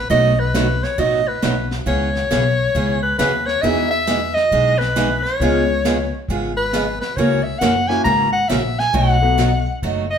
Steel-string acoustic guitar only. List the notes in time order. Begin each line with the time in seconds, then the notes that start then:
0.10 B2 F#3 A3 D#4 F#4
0.54 B2 F#3 A3 D#4 F#4
0.98 B2 F#3 A3 D#4 F#4
1.42 B2 F#3 A3 D#4 F#4
1.86 C#3 E3 B3 C#4 G#4
2.31 C#3 E3 B3 C#4 G#4
2.75 C#3 E3 B3 C#4 G#4
3.19 C#3 E3 B3 C#4 G#4
3.63 E3 G#3 B3 D#4 G#4
4.07 E3 G#3 B3 D#4 G#4
4.52 E3 G#3 B3 D#4 G#4
4.96 E3 G#3 B3 D#4 G#4
5.41 C#3 G#3 B3 F4 G#4
5.85 C#3 G#3 B3 F4 G#4
6.30 C#3 G#3 B3 F4 G#4
6.74 C#3 G#3 B3 F4 G#4
7.18 C#3 E3 A#3 C#4 F#4
7.61 C#3 E3 A#3 C#4 F#4
8.05 C#3 E3 A#3 C#4 F#4
8.49 C#3 E3 A#3 C#4 F#4
8.93 B2 F#3 A3 D#4 F#4
9.38 B2 F#3 A3 D#4 F#4
9.83 B2 F#3 A3 D#4 F#4